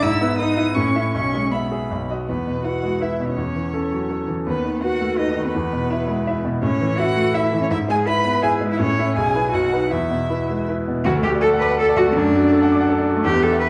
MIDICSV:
0, 0, Header, 1, 4, 480
1, 0, Start_track
1, 0, Key_signature, 4, "major"
1, 0, Tempo, 373367
1, 35, Time_signature, 3, 2, 24, 8
1, 3396, Tempo, 362100
1, 12036, Tempo, 378310
1, 14436, Tempo, 366524
1, 17897, End_track
2, 0, Start_track
2, 0, Title_t, "Violin"
2, 0, Program_c, 0, 40
2, 32, Note_on_c, 0, 88, 115
2, 485, Note_off_c, 0, 88, 0
2, 493, Note_on_c, 0, 87, 101
2, 961, Note_on_c, 0, 85, 98
2, 981, Note_off_c, 0, 87, 0
2, 1452, Note_off_c, 0, 85, 0
2, 1460, Note_on_c, 0, 85, 101
2, 1949, Note_on_c, 0, 83, 73
2, 1969, Note_off_c, 0, 85, 0
2, 2684, Note_off_c, 0, 83, 0
2, 2933, Note_on_c, 0, 71, 61
2, 3401, Note_on_c, 0, 78, 68
2, 3421, Note_off_c, 0, 71, 0
2, 3895, Note_on_c, 0, 76, 54
2, 3914, Note_off_c, 0, 78, 0
2, 4248, Note_off_c, 0, 76, 0
2, 4264, Note_on_c, 0, 73, 62
2, 5553, Note_off_c, 0, 73, 0
2, 5818, Note_on_c, 0, 71, 72
2, 6257, Note_off_c, 0, 71, 0
2, 6292, Note_on_c, 0, 78, 75
2, 6756, Note_off_c, 0, 78, 0
2, 6767, Note_on_c, 0, 75, 80
2, 7115, Note_off_c, 0, 75, 0
2, 7124, Note_on_c, 0, 71, 80
2, 8407, Note_off_c, 0, 71, 0
2, 8682, Note_on_c, 0, 73, 91
2, 9150, Note_on_c, 0, 78, 109
2, 9170, Note_off_c, 0, 73, 0
2, 9629, Note_on_c, 0, 76, 89
2, 9649, Note_off_c, 0, 78, 0
2, 9986, Note_off_c, 0, 76, 0
2, 10009, Note_on_c, 0, 73, 78
2, 10052, Note_off_c, 0, 73, 0
2, 10110, Note_on_c, 0, 76, 106
2, 10205, Note_off_c, 0, 76, 0
2, 10363, Note_on_c, 0, 80, 116
2, 10456, Note_off_c, 0, 80, 0
2, 10598, Note_on_c, 0, 83, 104
2, 11063, Note_off_c, 0, 83, 0
2, 11071, Note_on_c, 0, 80, 100
2, 11177, Note_off_c, 0, 80, 0
2, 11457, Note_on_c, 0, 76, 81
2, 11550, Note_off_c, 0, 76, 0
2, 11558, Note_on_c, 0, 73, 102
2, 12026, Note_off_c, 0, 73, 0
2, 12034, Note_on_c, 0, 80, 90
2, 12520, Note_on_c, 0, 78, 85
2, 12539, Note_off_c, 0, 80, 0
2, 12996, Note_on_c, 0, 76, 84
2, 13015, Note_off_c, 0, 78, 0
2, 13960, Note_off_c, 0, 76, 0
2, 14441, Note_on_c, 0, 66, 97
2, 14537, Note_off_c, 0, 66, 0
2, 14692, Note_on_c, 0, 67, 92
2, 14786, Note_off_c, 0, 67, 0
2, 14932, Note_on_c, 0, 69, 95
2, 15026, Note_off_c, 0, 69, 0
2, 15176, Note_on_c, 0, 71, 100
2, 15270, Note_off_c, 0, 71, 0
2, 15428, Note_on_c, 0, 69, 89
2, 15650, Note_on_c, 0, 66, 92
2, 15669, Note_off_c, 0, 69, 0
2, 15877, Note_off_c, 0, 66, 0
2, 15885, Note_on_c, 0, 62, 85
2, 17058, Note_off_c, 0, 62, 0
2, 17331, Note_on_c, 0, 76, 87
2, 17897, Note_off_c, 0, 76, 0
2, 17897, End_track
3, 0, Start_track
3, 0, Title_t, "Cello"
3, 0, Program_c, 1, 42
3, 30, Note_on_c, 1, 64, 94
3, 497, Note_off_c, 1, 64, 0
3, 504, Note_on_c, 1, 63, 94
3, 964, Note_off_c, 1, 63, 0
3, 972, Note_on_c, 1, 61, 84
3, 1447, Note_off_c, 1, 61, 0
3, 1459, Note_on_c, 1, 61, 79
3, 1940, Note_on_c, 1, 59, 65
3, 1960, Note_off_c, 1, 61, 0
3, 2679, Note_off_c, 1, 59, 0
3, 2920, Note_on_c, 1, 59, 55
3, 3360, Note_off_c, 1, 59, 0
3, 3379, Note_on_c, 1, 66, 65
3, 3884, Note_on_c, 1, 64, 53
3, 3904, Note_off_c, 1, 66, 0
3, 4243, Note_on_c, 1, 61, 54
3, 4263, Note_off_c, 1, 64, 0
3, 5569, Note_off_c, 1, 61, 0
3, 5821, Note_on_c, 1, 59, 68
3, 6285, Note_on_c, 1, 66, 80
3, 6304, Note_off_c, 1, 59, 0
3, 6774, Note_on_c, 1, 63, 81
3, 6794, Note_off_c, 1, 66, 0
3, 7130, Note_on_c, 1, 59, 70
3, 7150, Note_off_c, 1, 63, 0
3, 8436, Note_off_c, 1, 59, 0
3, 8669, Note_on_c, 1, 61, 81
3, 9137, Note_on_c, 1, 66, 96
3, 9157, Note_off_c, 1, 61, 0
3, 9624, Note_on_c, 1, 64, 78
3, 9643, Note_off_c, 1, 66, 0
3, 9974, Note_on_c, 1, 61, 71
3, 9993, Note_off_c, 1, 64, 0
3, 10099, Note_off_c, 1, 61, 0
3, 10109, Note_on_c, 1, 64, 87
3, 10204, Note_off_c, 1, 64, 0
3, 10358, Note_on_c, 1, 68, 78
3, 10583, Note_on_c, 1, 71, 91
3, 10603, Note_off_c, 1, 68, 0
3, 11063, Note_on_c, 1, 68, 81
3, 11083, Note_off_c, 1, 71, 0
3, 11396, Note_off_c, 1, 68, 0
3, 11404, Note_on_c, 1, 64, 81
3, 11548, Note_on_c, 1, 61, 79
3, 11568, Note_off_c, 1, 64, 0
3, 12031, Note_on_c, 1, 68, 89
3, 12050, Note_off_c, 1, 61, 0
3, 12487, Note_off_c, 1, 68, 0
3, 12494, Note_on_c, 1, 66, 86
3, 12967, Note_off_c, 1, 66, 0
3, 12974, Note_on_c, 1, 64, 67
3, 13930, Note_off_c, 1, 64, 0
3, 14425, Note_on_c, 1, 66, 94
3, 14524, Note_off_c, 1, 66, 0
3, 14670, Note_on_c, 1, 67, 93
3, 14768, Note_off_c, 1, 67, 0
3, 14904, Note_on_c, 1, 69, 109
3, 15004, Note_off_c, 1, 69, 0
3, 15158, Note_on_c, 1, 71, 89
3, 15391, Note_off_c, 1, 71, 0
3, 15399, Note_on_c, 1, 69, 112
3, 15496, Note_off_c, 1, 69, 0
3, 15635, Note_on_c, 1, 66, 106
3, 15733, Note_off_c, 1, 66, 0
3, 15856, Note_on_c, 1, 62, 99
3, 17044, Note_off_c, 1, 62, 0
3, 17306, Note_on_c, 1, 67, 114
3, 17549, Note_on_c, 1, 69, 99
3, 17569, Note_off_c, 1, 67, 0
3, 17765, Note_off_c, 1, 69, 0
3, 17773, Note_on_c, 1, 71, 103
3, 17872, Note_off_c, 1, 71, 0
3, 17897, End_track
4, 0, Start_track
4, 0, Title_t, "Grand piano"
4, 0, Program_c, 2, 0
4, 0, Control_c, 2, 64, 127
4, 31, Note_on_c, 2, 44, 84
4, 61, Control_c, 2, 64, 0
4, 238, Control_c, 2, 64, 127
4, 270, Note_on_c, 2, 59, 67
4, 501, Note_on_c, 2, 71, 65
4, 642, Note_off_c, 2, 59, 0
4, 733, Note_on_c, 2, 64, 64
4, 877, Note_off_c, 2, 71, 0
4, 941, Note_off_c, 2, 44, 0
4, 971, Note_off_c, 2, 64, 0
4, 984, Note_on_c, 2, 45, 69
4, 997, Control_c, 2, 64, 0
4, 1197, Control_c, 2, 64, 127
4, 1229, Note_on_c, 2, 64, 48
4, 1237, Note_on_c, 2, 76, 56
4, 1441, Note_off_c, 2, 64, 0
4, 1445, Note_off_c, 2, 76, 0
4, 1448, Note_off_c, 2, 45, 0
4, 1474, Note_on_c, 2, 35, 63
4, 1482, Control_c, 2, 64, 0
4, 1695, Control_c, 2, 64, 127
4, 1721, Note_on_c, 2, 56, 47
4, 1968, Note_on_c, 2, 76, 53
4, 2105, Note_off_c, 2, 56, 0
4, 2206, Note_on_c, 2, 68, 48
4, 2351, Note_off_c, 2, 76, 0
4, 2418, Note_off_c, 2, 35, 0
4, 2445, Note_off_c, 2, 68, 0
4, 2456, Note_on_c, 2, 35, 60
4, 2465, Control_c, 2, 64, 0
4, 2645, Control_c, 2, 64, 127
4, 2694, Note_on_c, 2, 66, 46
4, 2706, Note_on_c, 2, 75, 52
4, 2906, Note_off_c, 2, 66, 0
4, 2913, Note_off_c, 2, 75, 0
4, 2919, Note_off_c, 2, 35, 0
4, 2947, Note_on_c, 2, 40, 47
4, 2952, Control_c, 2, 64, 0
4, 3172, Control_c, 2, 64, 127
4, 3177, Note_on_c, 2, 47, 34
4, 3400, Note_on_c, 2, 64, 35
4, 3406, Note_on_c, 2, 71, 38
4, 3548, Note_off_c, 2, 47, 0
4, 3614, Note_off_c, 2, 64, 0
4, 3618, Note_off_c, 2, 71, 0
4, 3647, Note_on_c, 2, 56, 38
4, 3876, Note_on_c, 2, 64, 38
4, 3879, Note_on_c, 2, 71, 38
4, 4027, Note_off_c, 2, 56, 0
4, 4093, Note_off_c, 2, 64, 0
4, 4096, Note_off_c, 2, 71, 0
4, 4135, Note_on_c, 2, 47, 38
4, 4329, Note_off_c, 2, 40, 0
4, 4363, Note_on_c, 2, 40, 49
4, 4369, Note_off_c, 2, 47, 0
4, 4389, Control_c, 2, 64, 0
4, 4599, Control_c, 2, 64, 127
4, 4609, Note_on_c, 2, 52, 37
4, 4845, Note_on_c, 2, 61, 37
4, 4847, Note_on_c, 2, 69, 41
4, 4992, Note_off_c, 2, 52, 0
4, 5062, Note_off_c, 2, 61, 0
4, 5063, Note_off_c, 2, 69, 0
4, 5092, Note_on_c, 2, 54, 37
4, 5331, Note_on_c, 2, 61, 41
4, 5338, Note_on_c, 2, 69, 43
4, 5475, Note_off_c, 2, 54, 0
4, 5546, Note_off_c, 2, 61, 0
4, 5550, Note_off_c, 2, 69, 0
4, 5562, Note_on_c, 2, 52, 42
4, 5765, Note_off_c, 2, 40, 0
4, 5805, Note_off_c, 2, 52, 0
4, 5812, Note_on_c, 2, 39, 59
4, 5831, Control_c, 2, 64, 0
4, 6036, Control_c, 2, 64, 127
4, 6058, Note_on_c, 2, 51, 41
4, 6295, Note_on_c, 2, 66, 42
4, 6300, Note_on_c, 2, 71, 46
4, 6434, Note_off_c, 2, 51, 0
4, 6505, Note_off_c, 2, 66, 0
4, 6508, Note_off_c, 2, 71, 0
4, 6529, Note_on_c, 2, 57, 43
4, 6769, Note_on_c, 2, 66, 47
4, 6773, Note_on_c, 2, 71, 53
4, 6908, Note_off_c, 2, 57, 0
4, 6981, Note_off_c, 2, 66, 0
4, 6983, Note_off_c, 2, 71, 0
4, 7007, Note_on_c, 2, 51, 50
4, 7198, Note_off_c, 2, 39, 0
4, 7242, Note_off_c, 2, 51, 0
4, 7248, Note_on_c, 2, 40, 65
4, 7266, Control_c, 2, 64, 0
4, 7486, Note_on_c, 2, 47, 47
4, 7491, Control_c, 2, 64, 127
4, 7718, Note_on_c, 2, 64, 49
4, 7720, Note_on_c, 2, 76, 49
4, 7863, Note_off_c, 2, 47, 0
4, 7932, Note_off_c, 2, 64, 0
4, 7933, Note_off_c, 2, 76, 0
4, 7947, Note_on_c, 2, 56, 52
4, 8207, Note_on_c, 2, 64, 49
4, 8210, Note_on_c, 2, 76, 58
4, 8332, Note_off_c, 2, 56, 0
4, 8415, Note_off_c, 2, 64, 0
4, 8417, Note_off_c, 2, 76, 0
4, 8437, Note_on_c, 2, 47, 56
4, 8631, Note_off_c, 2, 40, 0
4, 8672, Note_off_c, 2, 47, 0
4, 8679, Note_on_c, 2, 45, 67
4, 8693, Control_c, 2, 64, 0
4, 8919, Note_on_c, 2, 52, 61
4, 8931, Control_c, 2, 64, 127
4, 9165, Note_on_c, 2, 64, 59
4, 9169, Note_on_c, 2, 76, 57
4, 9294, Note_off_c, 2, 52, 0
4, 9371, Note_off_c, 2, 64, 0
4, 9373, Note_off_c, 2, 76, 0
4, 9393, Note_on_c, 2, 57, 52
4, 9632, Note_on_c, 2, 64, 57
4, 9638, Note_on_c, 2, 76, 68
4, 9772, Note_off_c, 2, 57, 0
4, 9844, Note_off_c, 2, 64, 0
4, 9847, Note_off_c, 2, 76, 0
4, 9865, Note_on_c, 2, 52, 59
4, 10066, Note_off_c, 2, 45, 0
4, 10105, Note_off_c, 2, 52, 0
4, 10112, Note_on_c, 2, 44, 72
4, 10129, Control_c, 2, 64, 0
4, 10344, Control_c, 2, 64, 127
4, 10350, Note_on_c, 2, 56, 55
4, 10591, Note_on_c, 2, 64, 58
4, 10596, Note_on_c, 2, 76, 58
4, 10734, Note_off_c, 2, 56, 0
4, 10807, Note_off_c, 2, 64, 0
4, 10809, Note_off_c, 2, 76, 0
4, 10829, Note_on_c, 2, 59, 58
4, 11068, Note_on_c, 2, 64, 58
4, 11072, Note_on_c, 2, 76, 63
4, 11216, Note_off_c, 2, 59, 0
4, 11287, Note_off_c, 2, 64, 0
4, 11289, Note_off_c, 2, 76, 0
4, 11308, Note_on_c, 2, 56, 60
4, 11514, Note_off_c, 2, 44, 0
4, 11551, Note_off_c, 2, 56, 0
4, 11554, Note_on_c, 2, 45, 72
4, 11581, Control_c, 2, 64, 0
4, 11784, Control_c, 2, 64, 127
4, 11804, Note_on_c, 2, 64, 51
4, 11810, Note_on_c, 2, 76, 56
4, 12017, Note_off_c, 2, 64, 0
4, 12021, Note_off_c, 2, 76, 0
4, 12023, Note_off_c, 2, 45, 0
4, 12046, Note_on_c, 2, 35, 71
4, 12059, Control_c, 2, 64, 0
4, 12248, Control_c, 2, 64, 127
4, 12283, Note_on_c, 2, 64, 47
4, 12286, Note_on_c, 2, 71, 51
4, 12489, Note_off_c, 2, 64, 0
4, 12491, Note_off_c, 2, 71, 0
4, 12494, Note_off_c, 2, 35, 0
4, 12513, Note_on_c, 2, 35, 68
4, 12531, Control_c, 2, 64, 0
4, 12725, Control_c, 2, 64, 127
4, 12757, Note_on_c, 2, 63, 43
4, 12763, Note_on_c, 2, 71, 51
4, 12971, Note_off_c, 2, 63, 0
4, 12974, Note_off_c, 2, 71, 0
4, 12978, Note_off_c, 2, 35, 0
4, 12994, Note_on_c, 2, 40, 64
4, 13017, Control_c, 2, 64, 0
4, 13217, Control_c, 2, 64, 127
4, 13235, Note_on_c, 2, 47, 50
4, 13483, Note_on_c, 2, 64, 41
4, 13488, Note_on_c, 2, 71, 49
4, 13621, Note_off_c, 2, 47, 0
4, 13696, Note_off_c, 2, 64, 0
4, 13699, Note_off_c, 2, 71, 0
4, 13732, Note_on_c, 2, 56, 40
4, 13974, Note_on_c, 2, 64, 44
4, 13976, Note_on_c, 2, 71, 51
4, 14109, Note_off_c, 2, 56, 0
4, 14183, Note_off_c, 2, 64, 0
4, 14184, Note_off_c, 2, 71, 0
4, 14216, Note_on_c, 2, 47, 47
4, 14395, Note_off_c, 2, 40, 0
4, 14445, Note_off_c, 2, 47, 0
4, 14450, Note_on_c, 2, 38, 84
4, 14462, Control_c, 2, 64, 0
4, 14580, Note_on_c, 2, 57, 59
4, 14652, Control_c, 2, 64, 127
4, 14707, Note_on_c, 2, 66, 63
4, 14763, Note_off_c, 2, 57, 0
4, 14828, Note_on_c, 2, 74, 54
4, 14887, Note_off_c, 2, 66, 0
4, 14947, Note_on_c, 2, 69, 69
4, 15008, Note_off_c, 2, 74, 0
4, 15070, Note_on_c, 2, 78, 64
4, 15127, Note_off_c, 2, 69, 0
4, 15179, Note_on_c, 2, 86, 67
4, 15249, Note_off_c, 2, 78, 0
4, 15302, Note_on_c, 2, 78, 65
4, 15364, Note_off_c, 2, 86, 0
4, 15416, Note_on_c, 2, 69, 67
4, 15485, Note_off_c, 2, 78, 0
4, 15535, Note_on_c, 2, 74, 66
4, 15602, Note_off_c, 2, 69, 0
4, 15648, Note_on_c, 2, 66, 62
4, 15721, Note_off_c, 2, 74, 0
4, 15774, Note_on_c, 2, 57, 62
4, 15838, Note_off_c, 2, 66, 0
4, 15848, Note_off_c, 2, 38, 0
4, 15889, Note_off_c, 2, 57, 0
4, 15896, Note_on_c, 2, 42, 82
4, 15908, Control_c, 2, 64, 0
4, 16020, Note_on_c, 2, 57, 52
4, 16141, Note_on_c, 2, 66, 66
4, 16155, Control_c, 2, 64, 127
4, 16204, Note_off_c, 2, 57, 0
4, 16258, Note_on_c, 2, 74, 50
4, 16325, Note_off_c, 2, 66, 0
4, 16374, Note_on_c, 2, 69, 61
4, 16444, Note_off_c, 2, 74, 0
4, 16500, Note_on_c, 2, 78, 71
4, 16561, Note_off_c, 2, 69, 0
4, 16623, Note_on_c, 2, 86, 72
4, 16684, Note_off_c, 2, 78, 0
4, 16735, Note_on_c, 2, 78, 68
4, 16805, Note_off_c, 2, 86, 0
4, 16844, Note_on_c, 2, 69, 67
4, 16920, Note_off_c, 2, 78, 0
4, 16964, Note_on_c, 2, 74, 59
4, 17035, Note_off_c, 2, 69, 0
4, 17085, Note_on_c, 2, 66, 66
4, 17154, Note_off_c, 2, 74, 0
4, 17204, Note_on_c, 2, 57, 64
4, 17274, Note_off_c, 2, 66, 0
4, 17283, Note_off_c, 2, 42, 0
4, 17312, Note_on_c, 2, 40, 82
4, 17322, Note_off_c, 2, 57, 0
4, 17345, Control_c, 2, 64, 0
4, 17430, Note_on_c, 2, 59, 58
4, 17559, Note_on_c, 2, 67, 61
4, 17595, Control_c, 2, 64, 127
4, 17625, Note_off_c, 2, 59, 0
4, 17677, Note_on_c, 2, 76, 55
4, 17749, Note_off_c, 2, 67, 0
4, 17797, Note_on_c, 2, 71, 63
4, 17867, Note_off_c, 2, 76, 0
4, 17897, Note_off_c, 2, 40, 0
4, 17897, Note_off_c, 2, 71, 0
4, 17897, End_track
0, 0, End_of_file